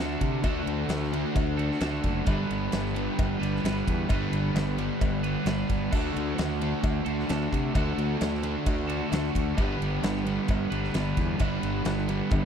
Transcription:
Already playing: fingered electric bass D2, overdriven electric guitar D3 A3 D4
0.00 overdriven electric guitar D4 F#4 A4
0.21 fingered electric bass C3, kick, ride
0.42 fingered electric bass D2, overdriven electric guitar D3 A3 D4 F#4 A4, kick, ride, cowbell
0.46 overdriven electric guitar D4
0.66 fingered electric bass D2, ride
0.89 fingered electric bass D2, snare, ride, cowbell
1.03 snare
1.12 overdriven electric guitar D3 A3 D4, ride
1.35 fingered electric bass D2, kick, ride, cowbell
1.56 overdriven electric guitar D3 D4 F#4 A4, ride
1.72 snare
1.80 fingered electric bass D2, overdriven electric guitar D3 D4 F#4 A4, snare, ride, cowbell
2.04 fingered electric bass F#1, kick, ride
2.25 fingered electric bass G1, overdriven electric guitar G2 D3 G3 B3 D4 B4, kick, ride, cowbell
2.51 fingered electric bass G1, ride
2.72 fingered electric bass G1, snare, ride, cowbell
2.87 snare
2.94 overdriven electric guitar G2 D3 G3, ride
3.19 fingered electric bass G1, kick, ride, cowbell
3.40 fingered electric bass G1, overdriven electric guitar G3 B3 D4 B4, ride
3.56 snare
3.63 fingered electric bass G1, overdriven electric guitar G3 B3 D4 B4, snare, ride, cowbell
3.87 fingered electric bass E2, kick, ride
4.09 fingered electric bass G1, overdriven electric guitar G2 D3 G3 B3 D4 B4, kick, ride, cowbell
4.32 fingered electric bass G1, ride
4.54 fingered electric bass G1, snare, ride, cowbell
4.78 overdriven electric guitar G2 D3 G3, ride
5.01 fingered electric bass G1, kick, ride, cowbell
5.23 overdriven electric guitar G3 B3 D4 B4, ride
5.45 fingered electric bass G1, overdriven electric guitar G3 B3 D4 B4, snare, ride, cowbell
5.69 fingered electric bass G1, kick, ride
5.91 fingered electric bass D2, overdriven electric guitar D3 A3 D4 F#4 A4, kick, cowbell, crash
6.16 fingered electric bass D2, ride
6.38 fingered electric bass D2, snare, ride, cowbell
6.51 snare
6.61 overdriven electric guitar D3 A3 D4, ride
6.83 fingered electric bass D2, kick, ride, cowbell
7.05 fingered electric bass D2, overdriven electric guitar D3 D4 F#4 A4, ride
7.20 snare
7.29 fingered electric bass D2, overdriven electric guitar D3 D4 F#4 A4, snare, ride, cowbell
7.52 fingered electric bass C3, kick, ride
7.73 fingered electric bass D2, overdriven electric guitar D3 A3 D4 F#4 A4, kick, ride, cowbell
7.78 overdriven electric guitar D4
7.97 fingered electric bass D2, ride
8.21 fingered electric bass D2, snare, ride, cowbell
8.34 snare
8.43 overdriven electric guitar D3 A3 D4, ride
8.66 fingered electric bass D2, kick, ride, cowbell
8.88 overdriven electric guitar D3 D4 F#4 A4, ride
9.10 fingered electric bass D2, overdriven electric guitar D3 D4 F#4 A4, snare, ride, cowbell
9.35 fingered electric bass D2, kick, ride
9.55 fingered electric bass G1, overdriven electric guitar G2 D3 G3 B3 D4 B4, kick, ride, cowbell
9.60 overdriven electric guitar G3
9.81 fingered electric bass G1, ride
10.02 fingered electric bass G1, snare, ride, cowbell
10.15 snare
10.25 overdriven electric guitar G2 D3 G3, ride
10.48 fingered electric bass G1, kick, ride, cowbell
10.70 fingered electric bass G1, overdriven electric guitar G3 B3 D4 B4, ride
10.84 snare
10.93 fingered electric bass G1, overdriven electric guitar G3 B3 D4 B4, snare, ride, cowbell
11.17 fingered electric bass E2, kick, ride
11.39 fingered electric bass G1, overdriven electric guitar G2 D3 G3 B3 D4 B4, kick, ride, cowbell
11.63 fingered electric bass G1, ride
11.85 fingered electric bass G1, snare, ride, cowbell
11.99 snare
12.08 overdriven electric guitar G2 D3 G3, ride
12.31 fingered electric bass G1, kick, high tom, cowbell

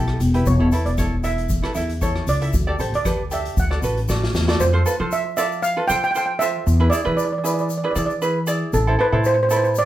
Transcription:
Already playing: upright bass B1, ukulele E4 G4 A4, steel pan G5
0.08 cross-stick
0.20 upright bass E1, closed hi-hat, shaker
0.34 ukulele E4 G4 B4, closed hi-hat
0.46 upright bass E1, steel pan C#5, kick, closed hi-hat, shaker
0.60 ukulele E4 A4 C#5
0.72 upright bass E2, ukulele E4 A4 B4, closed hi-hat, shaker
0.86 upright bass E1, steel pan D5, closed hi-hat
0.98 ukulele E4 A4 C#5, kick, cross-stick, closed hi-hat, shaker
1.23 ukulele E4 A4 E5, steel pan E5, closed hi-hat, shaker
1.38 closed hi-hat
1.49 kick, closed hi-hat, shaker
1.62 ukulele E4 A4 B4, cross-stick
1.75 upright bass E2, ukulele E4 A4 E5, closed hi-hat, shaker
1.89 closed hi-hat
2.01 ukulele E4 A4 C#5, steel pan C#5, kick, closed hi-hat, shaker
2.16 cross-stick
2.27 upright bass C#2, steel pan D5, closed hi-hat, shaker
2.41 ukulele E4 A4 E5, closed hi-hat
2.53 upright bass D2, kick, closed hi-hat, shaker
2.67 ukulele G4 A4 D5
2.78 upright bass A1, ukulele G4 A4 C5, closed hi-hat, shaker
2.92 upright bass D2, steel pan D5, closed hi-hat
3.05 ukulele G4 A4 B4, kick, cross-stick, closed hi-hat, shaker
3.31 ukulele G4 A4 D5, steel pan E5, closed hi-hat, shaker
3.45 closed hi-hat
3.57 upright bass D2, steel pan F#5, kick, closed hi-hat, shaker
3.71 ukulele F#4 A4 D5, cross-stick
3.82 upright bass A1, ukulele F#4 A4 B4, closed hi-hat, shaker
3.97 closed hi-hat
4.08 ukulele F#4 A4 D5, kick, snare, shaker
4.24 snare
4.34 upright bass E2, snare, shaker
4.48 ukulele F#4 A4 D5, snare
4.60 upright bass F2, steel pan C5, shaker
4.73 ukulele F4 A4 C5
4.86 ukulele F4 A4 B4, shaker
5.00 upright bass F3, ukulele F4 A4 C5
5.11 steel pan E5, shaker
5.37 ukulele F4 A4 D5, steel pan E5, shaker
5.52 shaker
5.62 steel pan F5, shaker
5.77 ukulele F4 A4 B4
5.88 upright bass F3, ukulele F4 A4 C5, steel pan G5, shaker
5.96 steel pan G5
6.04 steel pan G5, shaker
6.11 ukulele F4, steel pan G5
6.15 ukulele A4 C5, steel pan G5, shaker
6.26 steel pan G5
6.39 ukulele F4 A4 C5, steel pan E5, shaker
6.67 upright bass E2, shaker
6.80 ukulele E4 G#4 B4
6.90 ukulele E4 G#4 D5, steel pan D5, shaker
7.05 upright bass E3, ukulele E4 G#4 B4
7.17 steel pan D5, shaker
7.25 steel pan D5
7.32 steel pan D5
7.38 steel pan D5
7.44 ukulele E4 G#4 B4, steel pan D5, shaker
7.54 steel pan D5
7.58 steel pan D5, shaker
7.70 steel pan D5, shaker
7.77 steel pan D5
7.84 ukulele E4 G#4 B4, steel pan D5
7.91 steel pan D5
7.95 upright bass E3, ukulele E4 G#4 D5, steel pan D5, shaker
8.06 steel pan D5, shaker
8.22 ukulele E4 G#4 B4, shaker
8.47 ukulele E4 G#4 D5, shaker
8.73 upright bass A1, steel pan A4, shaker
8.87 ukulele E4 A4 C5
8.99 ukulele E4 A4 C5, steel pan B4
9.12 upright bass A2, ukulele E4 A4 C5
9.24 steel pan C5, shaker
9.34 steel pan C5
9.43 steel pan C5
9.49 ukulele E4 A4 B4, steel pan C5, shaker
9.56 steel pan C5
9.64 steel pan C5, shaker
9.75 steel pan D5, shaker

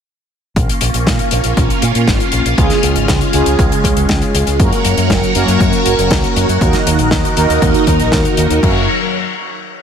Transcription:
0.56 fingered electric bass A#1, string machine A#3 C#4 F4, kick, closed hi-hat
0.69 closed hi-hat
0.81 fingered electric bass A#1, closed hi-hat
0.94 fingered electric bass A#1, closed hi-hat
1.07 fingered electric bass A#2, kick, snare, closed hi-hat
1.19 closed hi-hat
1.31 fingered electric bass A#1, closed hi-hat
1.44 fingered electric bass A#1, closed hi-hat
1.57 fingered electric bass A#1, kick, closed hi-hat
1.70 closed hi-hat
1.82 fingered electric bass A#2, closed hi-hat
1.95 fingered electric bass A#2, closed hi-hat
2.08 fingered electric bass G#1, kick, snare, closed hi-hat
2.20 closed hi-hat
2.32 fingered electric bass A#1, closed hi-hat
2.46 fingered electric bass A#1, closed hi-hat
2.58 fingered electric bass C#2, analog polysynth C#3 G#3 C#4 F4 G#4, string machine G#3 C#4, kick, closed hi-hat
2.70 snare, closed hi-hat
2.83 fingered electric bass C#2, closed hi-hat
2.96 fingered electric bass G#1, closed hi-hat
3.08 fingered electric bass C#2, kick, snare, closed hi-hat
3.21 closed hi-hat
3.33 fingered electric bass C#2, analog polysynth C#3 G#3 C#4 F4 G#4, closed hi-hat
3.46 fingered electric bass C#2, closed hi-hat
3.59 fingered electric bass C#2, kick, closed hi-hat
3.72 closed hi-hat
3.84 fingered electric bass C#2, kick, closed hi-hat
3.97 fingered electric bass C#2, closed hi-hat
4.09 fingered electric bass C#2, kick, snare, closed hi-hat
4.22 closed hi-hat
4.35 fingered electric bass C#2, closed hi-hat
4.47 fingered electric bass C#2, closed hi-hat
4.59 fingered electric bass F#2, string machine F#3 F#4 A#4 C#5, analog polysynth A#3 C#4 F#4 A#4, kick, closed hi-hat
4.72 closed hi-hat
4.85 fingered electric bass F#2, closed hi-hat
4.97 fingered electric bass F#2, closed hi-hat
5.10 fingered electric bass F#1, kick, snare, closed hi-hat
5.23 closed hi-hat
5.35 fingered electric bass F#2, analog polysynth A#3 C#4 F#4 A#4, closed hi-hat
5.48 fingered electric bass F#2, closed hi-hat
5.60 fingered electric bass F#2, kick, closed hi-hat
5.73 closed hi-hat
5.86 fingered electric bass F#1, closed hi-hat
5.98 fingered electric bass F#1, closed hi-hat
6.11 fingered electric bass C#2, kick, snare, closed hi-hat
6.24 closed hi-hat
6.36 fingered electric bass F#2, closed hi-hat
6.49 fingered electric bass F#2, closed hi-hat
6.61 fingered electric bass D#2, string machine D#3 D#4 A#4, analog polysynth D#3 A#3 D#4 F#4 A#4, kick, closed hi-hat
6.73 snare, closed hi-hat
6.87 fingered electric bass D#2, closed hi-hat
6.99 fingered electric bass A#1, closed hi-hat
7.11 fingered electric bass D#2, kick, snare, closed hi-hat
7.25 closed hi-hat
7.37 fingered electric bass D#2, analog polysynth D#3 A#3 D#4 F#4 A#4, closed hi-hat
7.50 fingered electric bass D#2, closed hi-hat
7.62 fingered electric bass D#2, kick, closed hi-hat
7.74 closed hi-hat
7.87 fingered electric bass D#2, kick, closed hi-hat
8.00 fingered electric bass A#1, closed hi-hat
8.12 fingered electric bass D#2, kick, snare, closed hi-hat
8.25 closed hi-hat
8.37 fingered electric bass D#2, closed hi-hat
8.50 fingered electric bass D#2, closed hi-hat
8.63 fingered electric bass F#2, string machine F#3 F#4 A#4 C#5, analog polysynth A#3 C#4 F#4 A#4, kick, crash

